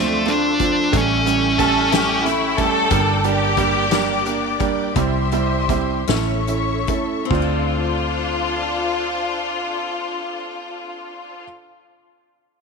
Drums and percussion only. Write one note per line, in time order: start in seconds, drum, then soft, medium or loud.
0.28 closed hi-hat medium
0.60 kick medium
0.60 closed hi-hat medium
0.93 kick loud
0.93 closed hi-hat medium
1.27 closed hi-hat medium
1.59 kick medium
1.59 closed hi-hat medium
1.92 snare loud
1.92 closed hi-hat medium
2.26 snare soft
2.26 closed hi-hat medium
2.58 kick medium
2.58 closed hi-hat soft
2.91 kick loud
2.91 closed hi-hat medium
3.24 closed hi-hat soft
3.57 kick medium
3.57 closed hi-hat medium
3.91 snare loud
3.91 closed hi-hat medium
4.26 closed hi-hat soft
4.60 kick loud
4.60 closed hi-hat soft
4.96 kick loud
4.96 closed hi-hat medium
5.32 closed hi-hat soft
5.69 kick medium
5.69 closed hi-hat medium
6.08 snare loud
6.08 closed hi-hat medium
6.48 closed hi-hat soft
6.88 kick loud
6.88 closed hi-hat medium
7.30 kick loud
7.30 crash medium